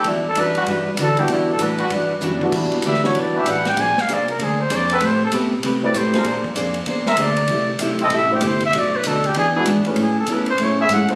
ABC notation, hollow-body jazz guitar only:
X:1
M:4/4
L:1/8
Q:"Swing" 1/4=194
K:Em
V:1 name="Hollow-body jazz guitar"
[E,G,DF] z [E,G,DF] z [E,G,DF] z [E,G,DF] z | [E,G,DF] z [E,G,DF] z [E,G,DF] z [E,G,DF] z | [E,DGB] z [E,DGB] z [E,DGB] z [E,DGB] z | [^A,D^G^B] z [A,DGB] z [A,DGB] z [A,DGB] z |
[A,CGB] z [A,CGB] z [A,CGB] z [A,CGB] z | [^A,D^G^B] z [A,DGB] z [A,DGB] z [A,DGB] z | [C,A,EG] z [C,A,EG] z [C,A,EG] z [C,A,EG] z | [B,,A,DF] z [B,,A,DF] z [E,B,D^G] z [E,B,DG] z |
[A,^CE^G] z [A,CEG] z [A,CEG] z [A,CEG] z |]